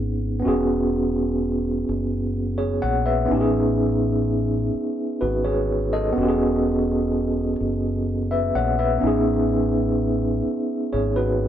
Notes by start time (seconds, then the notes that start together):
Already playing: G#1 B3 C#4 D#4 G#4
0.40 B3 C#4
0.45 E1 F#4 G#4
1.89 F#1
2.58 G#4 C#5
2.82 A#1 C#5 F#5
3.06 B4 E5
3.26 B3 C#4
3.31 A1 D#4 G4
3.41 G#4
4.75 muted fingered electric bass stroke
5.21 G#1 F#4 B4
5.45 G#4 C#5
5.93 A4 D#5
6.13 B3 C#4
6.17 E1 F#4
6.22 G4
6.28 G#4
7.61 F#1
8.31 B4 E5
8.55 A#1 C#5 F#5
8.79 B4 E5
8.98 B3 C#4
9.03 A1 D#4
9.07 G#4
10.46 muted fingered electric bass stroke
10.93 G#1 G#4 C#5
11.16 F#4 B4